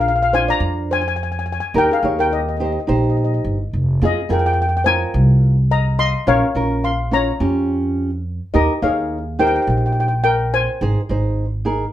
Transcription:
0.00 0.50 A#1 medium
0.00 0.11 D4 medium
0.00 0.11 F4 medium
0.00 0.11 A#4 medium
0.00 0.07 F5 medium
0.08 0.15 F5 medium
0.16 0.21 F5 medium
0.23 0.29 F5 medium
0.33 1.02 D4 medium
0.33 1.02 F4 medium
0.33 0.47 C5 medium
0.33 1.03 C5 medium
0.33 0.49 G#5 loud
0.48 0.87 D5 medium
0.48 0.92 A#5 loud
0.60 1.59 F2 medium
0.91 0.98 C5 medium
0.91 0.99 G#5 loud
1.01 1.07 G#5 medium
1.08 1.14 G#5 medium
1.16 1.22 G#5 medium
1.23 1.29 G#5 medium
1.32 1.37 G#5 medium
1.39 1.44 G#5 medium
1.46 1.51 G#5 medium
1.52 1.59 G#5 medium
1.60 1.66 G#5 medium
1.74 1.88 D#2 loud
1.74 1.92 D#4 medium
1.74 1.93 G4 medium
1.74 1.93 A#4 medium
1.74 1.90 A#4 medium
1.74 1.91 G5 loud
1.91 2.04 G#4 medium
1.91 2.05 F5 medium
2.03 2.77 D#2 medium
2.03 2.38 D#4 medium
2.03 2.38 G4 medium
2.03 2.38 C#5 medium
2.19 2.31 A#4 medium
2.19 2.32 G5 medium
2.31 2.39 G4 medium
2.31 2.40 D#5 medium
2.41 2.47 D#5 soft
2.49 2.54 D#5 medium
2.57 2.78 D#4 medium
2.57 2.78 G4 medium
2.57 2.62 D#5 soft
2.61 2.78 C5 medium
2.61 2.70 D#5 medium
2.72 2.78 D#5 soft
2.80 2.85 D#5 soft
2.87 3.38 A#1 medium
2.87 3.56 D#4 medium
2.87 3.57 G4 medium
2.87 3.57 C5 medium
2.87 2.93 D#5 soft
2.95 3.01 D#5 soft
3.04 3.08 D#5 soft
3.10 3.15 D#5 soft
3.17 3.22 D#5 soft
3.24 3.30 D#5 medium
3.34 3.38 D#5 soft
3.44 3.70 G1 medium
3.73 3.99 F1 medium
4.02 4.15 F2 medium
4.02 4.19 C4 medium
4.02 4.20 F4 medium
4.02 4.15 G#4 medium
4.02 4.20 G#4 medium
4.02 4.17 D#5 medium
4.29 5.04 F2 medium
4.29 4.64 C4 medium
4.29 4.64 F4 medium
4.29 4.64 G#4 medium
4.29 4.38 A#4 medium
4.29 4.38 G5 medium
4.39 4.45 G5 medium
4.46 4.52 G5 medium
4.53 4.60 G5 medium
4.62 4.68 G5 medium
4.69 4.76 G5 medium
4.77 4.83 G5 medium
4.84 5.55 C4 medium
4.84 5.55 F4 medium
4.84 5.55 A#4 medium
4.84 5.66 C5 medium
4.84 5.67 G#5 loud
5.14 6.13 C2 medium
5.71 5.98 D#5 medium
5.71 6.01 A#5 medium
5.99 6.26 D#5 medium
5.99 6.29 C6 loud
6.27 6.41 A#1 loud
6.27 6.45 C#4 medium
6.27 6.45 F4 medium
6.27 6.46 A#4 medium
6.27 6.86 C#5 loud
6.27 6.81 F5 medium
6.55 7.29 A#1 medium
6.55 6.90 C#4 medium
6.55 6.90 F4 medium
6.55 6.90 A#4 medium
6.84 7.11 F5 medium
6.84 7.14 C6 medium
7.11 7.30 C#4 medium
7.11 7.30 F4 medium
7.11 7.31 C#5 medium
7.11 8.23 C#5 medium
7.11 8.22 A#5 loud
7.40 8.39 F2 medium
7.40 8.09 C#4 medium
7.40 8.10 F4 medium
7.40 8.10 G4 medium
8.54 8.68 D#2 medium
8.54 8.72 D#4 medium
8.54 8.67 G4 medium
8.54 8.72 G4 medium
8.54 8.73 A#4 medium
8.54 8.67 D#5 medium
8.82 9.56 D#2 medium
8.82 9.17 D#4 medium
8.82 9.36 G#4 medium
8.82 9.17 A#4 medium
8.82 9.18 C#5 medium
8.82 9.41 F5 medium
9.39 10.08 D#4 medium
9.39 10.08 G4 medium
9.39 9.47 A#4 medium
9.39 10.08 C5 medium
9.39 9.46 G5 loud
9.47 9.54 G5 medium
9.56 9.61 G5 medium
9.62 9.69 G5 medium
9.67 10.66 A#1 medium
9.67 9.76 G5 medium
9.77 9.85 G5 soft
9.86 9.91 G5 medium
9.92 9.99 G5 medium
10.00 10.07 G5 medium
10.08 10.15 G5 medium
10.24 10.51 A#4 medium
10.24 10.53 G5 loud
10.54 11.93 C5 medium
10.54 11.93 G#5 loud
10.81 10.94 G#1 medium
10.81 10.99 D#4 medium
10.81 10.99 G#4 medium
10.81 11.00 C5 medium
11.09 11.83 G#1 medium
11.09 11.44 D#4 medium
11.09 11.44 G#4 medium
11.09 11.45 C5 medium
11.65 11.84 D#4 medium
11.65 11.84 G#4 medium
11.65 11.84 A#4 medium

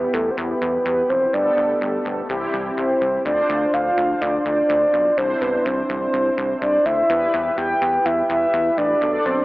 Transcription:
0.00 1.30 B3 medium
0.00 1.30 E4 medium
0.00 1.30 G4 medium
0.00 0.15 B4 loud
0.13 0.30 E2 loud
0.13 0.32 A4 medium
0.30 0.39 C5 medium
0.37 0.54 E2 loud
0.37 0.85 B4 medium
0.61 0.78 E2 loud
0.85 1.02 E2 loud
0.85 1.11 B4 loud
1.09 1.26 F1 medium
1.09 1.35 C5 medium
1.33 1.50 G1 loud
1.33 2.27 B3 medium
1.33 2.27 G4 medium
1.33 2.27 A4 medium
1.33 2.05 D5 medium
1.57 1.74 G1 medium
1.81 1.98 G1 loud
2.05 2.22 G1 loud
2.29 2.46 C2 loud
2.29 3.23 C4 medium
2.29 3.23 E4 medium
2.29 3.23 G4 medium
2.53 2.70 C2 loud
2.77 2.94 C2 loud
2.77 3.22 C5 medium
3.01 3.18 C2 medium
3.25 3.42 D2 loud
3.25 5.14 D4 medium
3.25 5.14 F4 medium
3.25 5.14 C5 medium
3.25 3.75 D5 loud
3.49 3.66 D2 loud
3.73 3.90 D2 loud
3.73 4.23 F5 loud
3.97 4.14 D2 loud
4.21 4.38 D2 loud
4.21 4.45 D5 loud
4.45 4.62 D2 loud
4.45 5.19 D5 loud
4.69 4.86 D2 loud
4.93 5.10 B1 medium
5.17 5.34 C2 loud
5.17 7.06 D4 medium
5.17 7.06 E4 medium
5.17 5.43 C5 loud
5.17 7.06 C5 medium
5.41 5.58 C2 loud
5.41 5.67 B4 medium
5.65 5.82 C2 loud
5.65 5.89 C5 loud
5.89 6.06 C2 loud
5.89 6.57 C5 loud
6.13 6.30 C2 loud
6.37 6.54 C2 loud
6.61 6.78 C2 loud
6.61 6.87 D5 loud
6.85 7.02 D2 loud
6.85 7.57 E5 loud
7.09 7.26 E2 loud
7.09 8.98 E4 medium
7.09 8.98 G4 medium
7.09 8.98 B4 medium
7.33 7.50 E2 loud
7.57 7.74 E2 loud
7.57 8.07 G5 loud
7.81 7.98 E2 loud
8.05 8.22 E2 loud
8.05 8.29 E5 loud
8.29 8.46 E2 loud
8.29 8.79 E5 loud
8.53 8.70 E2 loud
8.77 8.94 A1 loud
8.77 9.25 D5 loud
9.01 9.18 B1 loud
9.01 9.45 D4 medium
9.01 9.45 A4 medium
9.01 9.45 D5 medium
9.25 9.42 B1 loud
9.25 9.45 C5 medium

